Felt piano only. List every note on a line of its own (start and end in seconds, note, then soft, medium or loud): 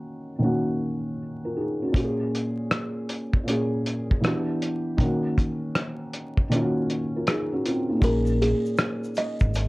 0.00 0.32 D#3 medium
0.00 0.33 A#3 medium
0.00 0.34 C#4 medium
0.00 0.38 F#4 medium
0.39 1.83 D#3 medium
0.39 1.84 A#3 medium
0.39 1.18 C#4 medium
0.44 1.19 F#4 medium
1.45 1.57 F4 soft
1.45 1.57 A#4 medium
1.57 1.81 D#4 medium
1.57 1.80 G#4 medium
1.82 1.94 C#4 soft
1.82 2.18 F#4 medium
1.92 3.36 A#2 medium
1.92 3.37 A#3 medium
1.92 3.38 C#4 medium
1.97 2.05 G4 medium
2.04 3.42 G#4 medium
3.43 4.21 A#2 medium
3.43 4.22 A#3 medium
3.43 4.23 C#4 medium
3.49 4.24 G#4 medium
4.21 4.93 E3 medium
4.21 4.94 B3 medium
4.21 4.95 D4 medium
4.26 4.96 G4 medium
4.97 6.40 D#3 medium
4.97 6.41 A#3 medium
4.97 6.42 C#4 medium
5.03 6.43 F#4 medium
6.50 7.93 D#3 medium
6.50 6.89 A#3 medium
6.50 6.90 C#4 medium
6.55 6.61 F4 medium
6.62 6.94 F#4 medium
7.16 7.27 F4 medium
7.16 7.27 A#4 medium
7.28 7.51 D#4 medium
7.28 7.51 G#4 medium
7.52 7.65 C#4 medium
7.52 7.64 F#4 medium
7.66 7.89 C4 medium
7.66 7.89 F4 medium
7.89 8.00 A#3 medium
7.89 8.25 D#4 medium
8.00 9.44 A#2 medium
8.00 9.45 A#3 medium
8.00 9.45 C#4 medium
8.05 9.46 G#4 medium